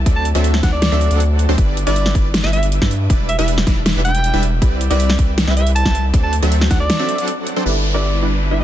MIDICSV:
0, 0, Header, 1, 8, 480
1, 0, Start_track
1, 0, Key_signature, 1, "major"
1, 0, Tempo, 379747
1, 77, Time_signature, 4, 2, 24, 8
1, 10920, End_track
2, 0, Start_track
2, 0, Title_t, "Alto saxophone"
2, 0, Program_c, 0, 65
2, 202, Note_on_c, 0, 81, 93
2, 354, Note_off_c, 0, 81, 0
2, 798, Note_on_c, 0, 78, 88
2, 896, Note_off_c, 0, 78, 0
2, 921, Note_on_c, 0, 74, 97
2, 1592, Note_off_c, 0, 74, 0
2, 2361, Note_on_c, 0, 74, 88
2, 2718, Note_off_c, 0, 74, 0
2, 3080, Note_on_c, 0, 76, 95
2, 3174, Note_off_c, 0, 76, 0
2, 3198, Note_on_c, 0, 76, 97
2, 3355, Note_off_c, 0, 76, 0
2, 4158, Note_on_c, 0, 76, 92
2, 4256, Note_off_c, 0, 76, 0
2, 4281, Note_on_c, 0, 76, 96
2, 4434, Note_off_c, 0, 76, 0
2, 5117, Note_on_c, 0, 79, 95
2, 5597, Note_off_c, 0, 79, 0
2, 6201, Note_on_c, 0, 74, 97
2, 6558, Note_off_c, 0, 74, 0
2, 6920, Note_on_c, 0, 76, 96
2, 7014, Note_off_c, 0, 76, 0
2, 7036, Note_on_c, 0, 76, 98
2, 7194, Note_off_c, 0, 76, 0
2, 7277, Note_on_c, 0, 81, 97
2, 7640, Note_off_c, 0, 81, 0
2, 7880, Note_on_c, 0, 81, 95
2, 8033, Note_off_c, 0, 81, 0
2, 8478, Note_on_c, 0, 78, 94
2, 8576, Note_off_c, 0, 78, 0
2, 8600, Note_on_c, 0, 74, 103
2, 9271, Note_off_c, 0, 74, 0
2, 10040, Note_on_c, 0, 74, 82
2, 10397, Note_off_c, 0, 74, 0
2, 10759, Note_on_c, 0, 76, 83
2, 10853, Note_off_c, 0, 76, 0
2, 10876, Note_on_c, 0, 76, 84
2, 10920, Note_off_c, 0, 76, 0
2, 10920, End_track
3, 0, Start_track
3, 0, Title_t, "Supersaw synth"
3, 0, Program_c, 1, 81
3, 78, Note_on_c, 1, 54, 91
3, 78, Note_on_c, 1, 60, 81
3, 78, Note_on_c, 1, 62, 85
3, 78, Note_on_c, 1, 69, 83
3, 78, Note_on_c, 1, 74, 97
3, 319, Note_off_c, 1, 54, 0
3, 319, Note_off_c, 1, 60, 0
3, 319, Note_off_c, 1, 62, 0
3, 319, Note_off_c, 1, 69, 0
3, 319, Note_off_c, 1, 74, 0
3, 441, Note_on_c, 1, 54, 92
3, 441, Note_on_c, 1, 60, 81
3, 441, Note_on_c, 1, 62, 86
3, 441, Note_on_c, 1, 69, 82
3, 442, Note_on_c, 1, 76, 103
3, 770, Note_off_c, 1, 54, 0
3, 770, Note_off_c, 1, 60, 0
3, 770, Note_off_c, 1, 62, 0
3, 770, Note_off_c, 1, 69, 0
3, 770, Note_off_c, 1, 76, 0
3, 798, Note_on_c, 1, 62, 73
3, 798, Note_on_c, 1, 69, 73
3, 798, Note_on_c, 1, 74, 88
3, 799, Note_on_c, 1, 54, 78
3, 799, Note_on_c, 1, 60, 71
3, 951, Note_off_c, 1, 54, 0
3, 951, Note_off_c, 1, 60, 0
3, 951, Note_off_c, 1, 62, 0
3, 951, Note_off_c, 1, 69, 0
3, 951, Note_off_c, 1, 74, 0
3, 1161, Note_on_c, 1, 54, 77
3, 1161, Note_on_c, 1, 69, 74
3, 1161, Note_on_c, 1, 76, 90
3, 1162, Note_on_c, 1, 60, 73
3, 1162, Note_on_c, 1, 62, 76
3, 1376, Note_off_c, 1, 54, 0
3, 1376, Note_off_c, 1, 60, 0
3, 1376, Note_off_c, 1, 69, 0
3, 1376, Note_off_c, 1, 76, 0
3, 1377, Note_off_c, 1, 62, 0
3, 1401, Note_on_c, 1, 54, 90
3, 1401, Note_on_c, 1, 60, 78
3, 1401, Note_on_c, 1, 69, 77
3, 1401, Note_on_c, 1, 78, 94
3, 1402, Note_on_c, 1, 62, 81
3, 1851, Note_off_c, 1, 54, 0
3, 1851, Note_off_c, 1, 78, 0
3, 1852, Note_off_c, 1, 60, 0
3, 1852, Note_off_c, 1, 62, 0
3, 1852, Note_off_c, 1, 69, 0
3, 1881, Note_on_c, 1, 60, 87
3, 1881, Note_on_c, 1, 69, 87
3, 1881, Note_on_c, 1, 72, 103
3, 1882, Note_on_c, 1, 54, 92
3, 1882, Note_on_c, 1, 62, 84
3, 1970, Note_off_c, 1, 54, 0
3, 1970, Note_off_c, 1, 60, 0
3, 1970, Note_off_c, 1, 62, 0
3, 1970, Note_off_c, 1, 69, 0
3, 1970, Note_off_c, 1, 72, 0
3, 1999, Note_on_c, 1, 55, 89
3, 2240, Note_off_c, 1, 55, 0
3, 2362, Note_on_c, 1, 55, 89
3, 2362, Note_on_c, 1, 62, 87
3, 2362, Note_on_c, 1, 64, 84
3, 2362, Note_on_c, 1, 71, 88
3, 2362, Note_on_c, 1, 76, 104
3, 2690, Note_off_c, 1, 55, 0
3, 2690, Note_off_c, 1, 62, 0
3, 2690, Note_off_c, 1, 64, 0
3, 2690, Note_off_c, 1, 71, 0
3, 2690, Note_off_c, 1, 76, 0
3, 2719, Note_on_c, 1, 55, 75
3, 2719, Note_on_c, 1, 62, 72
3, 2719, Note_on_c, 1, 64, 76
3, 2719, Note_on_c, 1, 71, 72
3, 2719, Note_on_c, 1, 74, 86
3, 2871, Note_off_c, 1, 55, 0
3, 2871, Note_off_c, 1, 62, 0
3, 2871, Note_off_c, 1, 64, 0
3, 2871, Note_off_c, 1, 71, 0
3, 2871, Note_off_c, 1, 74, 0
3, 3082, Note_on_c, 1, 55, 78
3, 3082, Note_on_c, 1, 62, 74
3, 3082, Note_on_c, 1, 64, 72
3, 3082, Note_on_c, 1, 71, 73
3, 3082, Note_on_c, 1, 76, 87
3, 3532, Note_off_c, 1, 55, 0
3, 3532, Note_off_c, 1, 62, 0
3, 3532, Note_off_c, 1, 64, 0
3, 3532, Note_off_c, 1, 71, 0
3, 3532, Note_off_c, 1, 76, 0
3, 3560, Note_on_c, 1, 55, 80
3, 3560, Note_on_c, 1, 62, 75
3, 3560, Note_on_c, 1, 64, 76
3, 3560, Note_on_c, 1, 76, 88
3, 3561, Note_on_c, 1, 71, 78
3, 3709, Note_off_c, 1, 55, 0
3, 3709, Note_off_c, 1, 62, 0
3, 3709, Note_off_c, 1, 64, 0
3, 3709, Note_off_c, 1, 71, 0
3, 3709, Note_off_c, 1, 76, 0
3, 3918, Note_on_c, 1, 55, 92
3, 3918, Note_on_c, 1, 62, 85
3, 3918, Note_on_c, 1, 64, 86
3, 3918, Note_on_c, 1, 71, 81
3, 3918, Note_on_c, 1, 74, 103
3, 4159, Note_off_c, 1, 55, 0
3, 4159, Note_off_c, 1, 62, 0
3, 4159, Note_off_c, 1, 64, 0
3, 4159, Note_off_c, 1, 71, 0
3, 4159, Note_off_c, 1, 74, 0
3, 4280, Note_on_c, 1, 55, 93
3, 4280, Note_on_c, 1, 62, 88
3, 4280, Note_on_c, 1, 64, 82
3, 4280, Note_on_c, 1, 71, 87
3, 4280, Note_on_c, 1, 76, 109
3, 4609, Note_off_c, 1, 55, 0
3, 4609, Note_off_c, 1, 62, 0
3, 4609, Note_off_c, 1, 64, 0
3, 4609, Note_off_c, 1, 71, 0
3, 4609, Note_off_c, 1, 76, 0
3, 4637, Note_on_c, 1, 62, 70
3, 4637, Note_on_c, 1, 64, 70
3, 4637, Note_on_c, 1, 71, 73
3, 4637, Note_on_c, 1, 74, 83
3, 4638, Note_on_c, 1, 55, 80
3, 4790, Note_off_c, 1, 62, 0
3, 4791, Note_off_c, 1, 55, 0
3, 4791, Note_off_c, 1, 64, 0
3, 4791, Note_off_c, 1, 71, 0
3, 4791, Note_off_c, 1, 74, 0
3, 5001, Note_on_c, 1, 55, 79
3, 5001, Note_on_c, 1, 62, 75
3, 5001, Note_on_c, 1, 64, 73
3, 5001, Note_on_c, 1, 71, 74
3, 5001, Note_on_c, 1, 76, 86
3, 5451, Note_off_c, 1, 55, 0
3, 5451, Note_off_c, 1, 62, 0
3, 5451, Note_off_c, 1, 64, 0
3, 5451, Note_off_c, 1, 71, 0
3, 5451, Note_off_c, 1, 76, 0
3, 5480, Note_on_c, 1, 64, 76
3, 5481, Note_on_c, 1, 55, 80
3, 5481, Note_on_c, 1, 62, 76
3, 5481, Note_on_c, 1, 71, 73
3, 5481, Note_on_c, 1, 76, 88
3, 5629, Note_off_c, 1, 55, 0
3, 5629, Note_off_c, 1, 62, 0
3, 5629, Note_off_c, 1, 64, 0
3, 5629, Note_off_c, 1, 71, 0
3, 5629, Note_off_c, 1, 76, 0
3, 5837, Note_on_c, 1, 55, 89
3, 5837, Note_on_c, 1, 60, 82
3, 5837, Note_on_c, 1, 64, 83
3, 5837, Note_on_c, 1, 71, 86
3, 5837, Note_on_c, 1, 74, 104
3, 6078, Note_off_c, 1, 64, 0
3, 6079, Note_off_c, 1, 55, 0
3, 6079, Note_off_c, 1, 60, 0
3, 6079, Note_off_c, 1, 71, 0
3, 6079, Note_off_c, 1, 74, 0
3, 6200, Note_on_c, 1, 55, 94
3, 6200, Note_on_c, 1, 64, 82
3, 6201, Note_on_c, 1, 60, 87
3, 6201, Note_on_c, 1, 71, 84
3, 6201, Note_on_c, 1, 76, 105
3, 6529, Note_off_c, 1, 55, 0
3, 6529, Note_off_c, 1, 64, 0
3, 6530, Note_off_c, 1, 60, 0
3, 6530, Note_off_c, 1, 71, 0
3, 6530, Note_off_c, 1, 76, 0
3, 6557, Note_on_c, 1, 55, 79
3, 6557, Note_on_c, 1, 60, 74
3, 6557, Note_on_c, 1, 64, 72
3, 6557, Note_on_c, 1, 71, 72
3, 6557, Note_on_c, 1, 74, 90
3, 6710, Note_off_c, 1, 60, 0
3, 6710, Note_off_c, 1, 64, 0
3, 6710, Note_off_c, 1, 71, 0
3, 6710, Note_off_c, 1, 74, 0
3, 6711, Note_off_c, 1, 55, 0
3, 6921, Note_on_c, 1, 55, 80
3, 6921, Note_on_c, 1, 60, 73
3, 6921, Note_on_c, 1, 64, 73
3, 6921, Note_on_c, 1, 71, 74
3, 6921, Note_on_c, 1, 76, 86
3, 7371, Note_off_c, 1, 55, 0
3, 7371, Note_off_c, 1, 60, 0
3, 7371, Note_off_c, 1, 64, 0
3, 7371, Note_off_c, 1, 71, 0
3, 7371, Note_off_c, 1, 76, 0
3, 7401, Note_on_c, 1, 55, 82
3, 7401, Note_on_c, 1, 60, 77
3, 7401, Note_on_c, 1, 64, 80
3, 7401, Note_on_c, 1, 71, 77
3, 7401, Note_on_c, 1, 76, 86
3, 7549, Note_off_c, 1, 55, 0
3, 7549, Note_off_c, 1, 60, 0
3, 7549, Note_off_c, 1, 64, 0
3, 7549, Note_off_c, 1, 71, 0
3, 7549, Note_off_c, 1, 76, 0
3, 7757, Note_on_c, 1, 54, 93
3, 7757, Note_on_c, 1, 60, 87
3, 7757, Note_on_c, 1, 62, 79
3, 7757, Note_on_c, 1, 74, 98
3, 7758, Note_on_c, 1, 69, 88
3, 7998, Note_off_c, 1, 54, 0
3, 7999, Note_off_c, 1, 60, 0
3, 7999, Note_off_c, 1, 62, 0
3, 7999, Note_off_c, 1, 69, 0
3, 7999, Note_off_c, 1, 74, 0
3, 8121, Note_on_c, 1, 54, 97
3, 8121, Note_on_c, 1, 69, 83
3, 8121, Note_on_c, 1, 76, 101
3, 8122, Note_on_c, 1, 60, 84
3, 8122, Note_on_c, 1, 62, 87
3, 8450, Note_off_c, 1, 54, 0
3, 8450, Note_off_c, 1, 60, 0
3, 8450, Note_off_c, 1, 62, 0
3, 8450, Note_off_c, 1, 69, 0
3, 8450, Note_off_c, 1, 76, 0
3, 8477, Note_on_c, 1, 54, 79
3, 8477, Note_on_c, 1, 60, 74
3, 8477, Note_on_c, 1, 62, 68
3, 8477, Note_on_c, 1, 69, 69
3, 8477, Note_on_c, 1, 74, 85
3, 8630, Note_off_c, 1, 62, 0
3, 8631, Note_off_c, 1, 54, 0
3, 8631, Note_off_c, 1, 60, 0
3, 8631, Note_off_c, 1, 69, 0
3, 8631, Note_off_c, 1, 74, 0
3, 8841, Note_on_c, 1, 54, 78
3, 8841, Note_on_c, 1, 60, 73
3, 8841, Note_on_c, 1, 62, 75
3, 8841, Note_on_c, 1, 69, 74
3, 8841, Note_on_c, 1, 76, 87
3, 9056, Note_off_c, 1, 54, 0
3, 9056, Note_off_c, 1, 60, 0
3, 9056, Note_off_c, 1, 62, 0
3, 9056, Note_off_c, 1, 69, 0
3, 9056, Note_off_c, 1, 76, 0
3, 9081, Note_on_c, 1, 54, 85
3, 9081, Note_on_c, 1, 60, 77
3, 9081, Note_on_c, 1, 62, 75
3, 9081, Note_on_c, 1, 69, 80
3, 9081, Note_on_c, 1, 78, 96
3, 9531, Note_off_c, 1, 54, 0
3, 9531, Note_off_c, 1, 60, 0
3, 9531, Note_off_c, 1, 62, 0
3, 9531, Note_off_c, 1, 69, 0
3, 9531, Note_off_c, 1, 78, 0
3, 9561, Note_on_c, 1, 54, 93
3, 9561, Note_on_c, 1, 60, 79
3, 9561, Note_on_c, 1, 62, 84
3, 9561, Note_on_c, 1, 69, 87
3, 9561, Note_on_c, 1, 72, 99
3, 9649, Note_off_c, 1, 72, 0
3, 9650, Note_off_c, 1, 54, 0
3, 9650, Note_off_c, 1, 60, 0
3, 9650, Note_off_c, 1, 62, 0
3, 9650, Note_off_c, 1, 69, 0
3, 9676, Note_on_c, 1, 71, 80
3, 9676, Note_on_c, 1, 74, 94
3, 9677, Note_on_c, 1, 55, 82
3, 9677, Note_on_c, 1, 62, 75
3, 9677, Note_on_c, 1, 64, 78
3, 9918, Note_off_c, 1, 55, 0
3, 9918, Note_off_c, 1, 62, 0
3, 9918, Note_off_c, 1, 64, 0
3, 9918, Note_off_c, 1, 71, 0
3, 9918, Note_off_c, 1, 74, 0
3, 10039, Note_on_c, 1, 76, 98
3, 10040, Note_on_c, 1, 55, 89
3, 10040, Note_on_c, 1, 62, 81
3, 10040, Note_on_c, 1, 64, 81
3, 10040, Note_on_c, 1, 71, 83
3, 10369, Note_off_c, 1, 55, 0
3, 10369, Note_off_c, 1, 62, 0
3, 10369, Note_off_c, 1, 64, 0
3, 10369, Note_off_c, 1, 71, 0
3, 10369, Note_off_c, 1, 76, 0
3, 10396, Note_on_c, 1, 55, 71
3, 10396, Note_on_c, 1, 62, 67
3, 10396, Note_on_c, 1, 64, 66
3, 10396, Note_on_c, 1, 71, 67
3, 10396, Note_on_c, 1, 74, 82
3, 10550, Note_off_c, 1, 55, 0
3, 10550, Note_off_c, 1, 62, 0
3, 10550, Note_off_c, 1, 64, 0
3, 10550, Note_off_c, 1, 71, 0
3, 10550, Note_off_c, 1, 74, 0
3, 10760, Note_on_c, 1, 55, 72
3, 10760, Note_on_c, 1, 62, 69
3, 10760, Note_on_c, 1, 64, 69
3, 10760, Note_on_c, 1, 71, 69
3, 10760, Note_on_c, 1, 76, 84
3, 10920, Note_off_c, 1, 55, 0
3, 10920, Note_off_c, 1, 62, 0
3, 10920, Note_off_c, 1, 64, 0
3, 10920, Note_off_c, 1, 71, 0
3, 10920, Note_off_c, 1, 76, 0
3, 10920, End_track
4, 0, Start_track
4, 0, Title_t, "String section"
4, 0, Program_c, 2, 48
4, 9677, Note_on_c, 2, 55, 69
4, 9677, Note_on_c, 2, 62, 61
4, 9678, Note_on_c, 2, 64, 63
4, 9678, Note_on_c, 2, 71, 73
4, 10920, Note_off_c, 2, 55, 0
4, 10920, Note_off_c, 2, 62, 0
4, 10920, Note_off_c, 2, 64, 0
4, 10920, Note_off_c, 2, 71, 0
4, 10920, End_track
5, 0, Start_track
5, 0, Title_t, "Felt piano"
5, 0, Program_c, 3, 0
5, 9652, Note_on_c, 3, 59, 77
5, 9669, Note_on_c, 3, 62, 75
5, 9686, Note_on_c, 3, 64, 75
5, 9703, Note_on_c, 3, 69, 89
5, 9893, Control_c, 3, 64, 127
5, 10834, Note_off_c, 3, 59, 0
5, 10845, Note_off_c, 3, 62, 0
5, 10853, Note_on_c, 3, 59, 85
5, 10854, Note_off_c, 3, 64, 0
5, 10862, Note_off_c, 3, 69, 0
5, 10870, Note_on_c, 3, 62, 77
5, 10920, Note_off_c, 3, 59, 0
5, 10920, Note_off_c, 3, 62, 0
5, 10920, End_track
6, 0, Start_track
6, 0, Title_t, "Sub bass"
6, 0, Program_c, 4, 38
6, 78, Note_on_c, 4, 38, 94
6, 416, Note_off_c, 4, 38, 0
6, 442, Note_on_c, 4, 38, 91
6, 775, Note_off_c, 4, 38, 0
6, 798, Note_on_c, 4, 38, 96
6, 1136, Note_off_c, 4, 38, 0
6, 1162, Note_on_c, 4, 38, 102
6, 1377, Note_off_c, 4, 38, 0
6, 1402, Note_on_c, 4, 38, 99
6, 1857, Note_off_c, 4, 38, 0
6, 1881, Note_on_c, 4, 38, 91
6, 1974, Note_off_c, 4, 38, 0
6, 1998, Note_on_c, 4, 31, 98
6, 2336, Note_off_c, 4, 31, 0
6, 2362, Note_on_c, 4, 31, 98
6, 2695, Note_off_c, 4, 31, 0
6, 2718, Note_on_c, 4, 31, 97
6, 3056, Note_off_c, 4, 31, 0
6, 3080, Note_on_c, 4, 31, 98
6, 3536, Note_off_c, 4, 31, 0
6, 3560, Note_on_c, 4, 43, 93
6, 3894, Note_off_c, 4, 43, 0
6, 3917, Note_on_c, 4, 28, 95
6, 4256, Note_off_c, 4, 28, 0
6, 4280, Note_on_c, 4, 28, 94
6, 4614, Note_off_c, 4, 28, 0
6, 4637, Note_on_c, 4, 28, 102
6, 4976, Note_off_c, 4, 28, 0
6, 5000, Note_on_c, 4, 28, 95
6, 5456, Note_off_c, 4, 28, 0
6, 5481, Note_on_c, 4, 28, 94
6, 5837, Note_on_c, 4, 36, 103
6, 5856, Note_off_c, 4, 28, 0
6, 6176, Note_off_c, 4, 36, 0
6, 6202, Note_on_c, 4, 36, 96
6, 6535, Note_off_c, 4, 36, 0
6, 6557, Note_on_c, 4, 36, 100
6, 6896, Note_off_c, 4, 36, 0
6, 6921, Note_on_c, 4, 36, 101
6, 7376, Note_off_c, 4, 36, 0
6, 7400, Note_on_c, 4, 36, 96
6, 7734, Note_off_c, 4, 36, 0
6, 7757, Note_on_c, 4, 38, 101
6, 8096, Note_off_c, 4, 38, 0
6, 8121, Note_on_c, 4, 38, 99
6, 8454, Note_off_c, 4, 38, 0
6, 8478, Note_on_c, 4, 38, 96
6, 8718, Note_off_c, 4, 38, 0
6, 9678, Note_on_c, 4, 31, 86
6, 10920, Note_off_c, 4, 31, 0
6, 10920, End_track
7, 0, Start_track
7, 0, Title_t, "Downlifter"
7, 0, Program_c, 5, 103
7, 9678, Note_on_c, 5, 60, 69
7, 10920, Note_off_c, 5, 60, 0
7, 10920, End_track
8, 0, Start_track
8, 0, Title_t, "Drums"
8, 78, Note_on_c, 9, 36, 125
8, 78, Note_on_c, 9, 42, 81
8, 204, Note_off_c, 9, 36, 0
8, 205, Note_off_c, 9, 42, 0
8, 318, Note_on_c, 9, 42, 68
8, 441, Note_off_c, 9, 42, 0
8, 441, Note_on_c, 9, 42, 62
8, 558, Note_off_c, 9, 42, 0
8, 558, Note_on_c, 9, 42, 75
8, 681, Note_on_c, 9, 40, 81
8, 685, Note_off_c, 9, 42, 0
8, 798, Note_on_c, 9, 36, 106
8, 798, Note_on_c, 9, 38, 67
8, 798, Note_on_c, 9, 42, 61
8, 808, Note_off_c, 9, 40, 0
8, 924, Note_off_c, 9, 36, 0
8, 924, Note_off_c, 9, 38, 0
8, 924, Note_off_c, 9, 42, 0
8, 1037, Note_on_c, 9, 38, 127
8, 1037, Note_on_c, 9, 42, 78
8, 1164, Note_off_c, 9, 38, 0
8, 1164, Note_off_c, 9, 42, 0
8, 1278, Note_on_c, 9, 42, 60
8, 1401, Note_off_c, 9, 42, 0
8, 1401, Note_on_c, 9, 42, 62
8, 1518, Note_off_c, 9, 42, 0
8, 1518, Note_on_c, 9, 42, 80
8, 1644, Note_off_c, 9, 42, 0
8, 1758, Note_on_c, 9, 42, 67
8, 1884, Note_off_c, 9, 42, 0
8, 1997, Note_on_c, 9, 42, 81
8, 1998, Note_on_c, 9, 36, 121
8, 2124, Note_off_c, 9, 36, 0
8, 2124, Note_off_c, 9, 42, 0
8, 2238, Note_on_c, 9, 42, 69
8, 2361, Note_off_c, 9, 42, 0
8, 2361, Note_on_c, 9, 42, 64
8, 2478, Note_off_c, 9, 42, 0
8, 2478, Note_on_c, 9, 42, 77
8, 2601, Note_on_c, 9, 40, 84
8, 2605, Note_off_c, 9, 42, 0
8, 2717, Note_on_c, 9, 36, 107
8, 2718, Note_on_c, 9, 42, 58
8, 2727, Note_off_c, 9, 40, 0
8, 2844, Note_off_c, 9, 36, 0
8, 2845, Note_off_c, 9, 42, 0
8, 2959, Note_on_c, 9, 38, 124
8, 2959, Note_on_c, 9, 42, 79
8, 3082, Note_on_c, 9, 40, 66
8, 3085, Note_off_c, 9, 38, 0
8, 3085, Note_off_c, 9, 42, 0
8, 3199, Note_on_c, 9, 42, 63
8, 3208, Note_off_c, 9, 40, 0
8, 3322, Note_off_c, 9, 42, 0
8, 3322, Note_on_c, 9, 42, 61
8, 3438, Note_off_c, 9, 42, 0
8, 3438, Note_on_c, 9, 42, 79
8, 3560, Note_on_c, 9, 36, 59
8, 3561, Note_on_c, 9, 40, 83
8, 3564, Note_off_c, 9, 42, 0
8, 3678, Note_on_c, 9, 42, 69
8, 3687, Note_off_c, 9, 36, 0
8, 3688, Note_off_c, 9, 40, 0
8, 3804, Note_off_c, 9, 42, 0
8, 3917, Note_on_c, 9, 36, 121
8, 3917, Note_on_c, 9, 42, 82
8, 4044, Note_off_c, 9, 36, 0
8, 4044, Note_off_c, 9, 42, 0
8, 4158, Note_on_c, 9, 42, 70
8, 4281, Note_off_c, 9, 42, 0
8, 4281, Note_on_c, 9, 42, 65
8, 4398, Note_off_c, 9, 42, 0
8, 4398, Note_on_c, 9, 42, 78
8, 4522, Note_on_c, 9, 40, 92
8, 4524, Note_off_c, 9, 42, 0
8, 4637, Note_on_c, 9, 36, 104
8, 4637, Note_on_c, 9, 38, 59
8, 4637, Note_on_c, 9, 42, 62
8, 4648, Note_off_c, 9, 40, 0
8, 4764, Note_off_c, 9, 36, 0
8, 4764, Note_off_c, 9, 38, 0
8, 4764, Note_off_c, 9, 42, 0
8, 4878, Note_on_c, 9, 38, 118
8, 4878, Note_on_c, 9, 42, 77
8, 5004, Note_off_c, 9, 38, 0
8, 5004, Note_off_c, 9, 42, 0
8, 5117, Note_on_c, 9, 42, 60
8, 5241, Note_off_c, 9, 42, 0
8, 5241, Note_on_c, 9, 42, 63
8, 5358, Note_off_c, 9, 42, 0
8, 5358, Note_on_c, 9, 42, 84
8, 5484, Note_off_c, 9, 42, 0
8, 5597, Note_on_c, 9, 42, 69
8, 5724, Note_off_c, 9, 42, 0
8, 5837, Note_on_c, 9, 36, 119
8, 5838, Note_on_c, 9, 42, 84
8, 5964, Note_off_c, 9, 36, 0
8, 5964, Note_off_c, 9, 42, 0
8, 6078, Note_on_c, 9, 42, 73
8, 6201, Note_off_c, 9, 42, 0
8, 6201, Note_on_c, 9, 42, 67
8, 6318, Note_off_c, 9, 42, 0
8, 6318, Note_on_c, 9, 42, 88
8, 6441, Note_on_c, 9, 40, 90
8, 6444, Note_off_c, 9, 42, 0
8, 6557, Note_on_c, 9, 36, 107
8, 6558, Note_on_c, 9, 42, 61
8, 6567, Note_off_c, 9, 40, 0
8, 6683, Note_off_c, 9, 36, 0
8, 6684, Note_off_c, 9, 42, 0
8, 6797, Note_on_c, 9, 38, 114
8, 6797, Note_on_c, 9, 42, 89
8, 6921, Note_on_c, 9, 40, 71
8, 6924, Note_off_c, 9, 38, 0
8, 6924, Note_off_c, 9, 42, 0
8, 7038, Note_on_c, 9, 42, 67
8, 7048, Note_off_c, 9, 40, 0
8, 7162, Note_off_c, 9, 42, 0
8, 7162, Note_on_c, 9, 42, 69
8, 7279, Note_off_c, 9, 42, 0
8, 7279, Note_on_c, 9, 42, 89
8, 7400, Note_on_c, 9, 36, 59
8, 7401, Note_on_c, 9, 40, 86
8, 7405, Note_off_c, 9, 42, 0
8, 7519, Note_on_c, 9, 42, 68
8, 7526, Note_off_c, 9, 36, 0
8, 7528, Note_off_c, 9, 40, 0
8, 7645, Note_off_c, 9, 42, 0
8, 7757, Note_on_c, 9, 36, 120
8, 7759, Note_on_c, 9, 42, 94
8, 7883, Note_off_c, 9, 36, 0
8, 7885, Note_off_c, 9, 42, 0
8, 7998, Note_on_c, 9, 42, 76
8, 8121, Note_off_c, 9, 42, 0
8, 8121, Note_on_c, 9, 42, 72
8, 8238, Note_off_c, 9, 42, 0
8, 8238, Note_on_c, 9, 42, 87
8, 8360, Note_on_c, 9, 40, 83
8, 8364, Note_off_c, 9, 42, 0
8, 8477, Note_on_c, 9, 36, 105
8, 8478, Note_on_c, 9, 38, 58
8, 8478, Note_on_c, 9, 42, 69
8, 8487, Note_off_c, 9, 40, 0
8, 8603, Note_off_c, 9, 36, 0
8, 8604, Note_off_c, 9, 38, 0
8, 8604, Note_off_c, 9, 42, 0
8, 8718, Note_on_c, 9, 38, 117
8, 8718, Note_on_c, 9, 42, 90
8, 8844, Note_off_c, 9, 38, 0
8, 8844, Note_off_c, 9, 42, 0
8, 8957, Note_on_c, 9, 42, 66
8, 9080, Note_off_c, 9, 42, 0
8, 9080, Note_on_c, 9, 42, 67
8, 9197, Note_off_c, 9, 42, 0
8, 9197, Note_on_c, 9, 42, 93
8, 9323, Note_off_c, 9, 42, 0
8, 9437, Note_on_c, 9, 42, 74
8, 9563, Note_off_c, 9, 42, 0
8, 10920, End_track
0, 0, End_of_file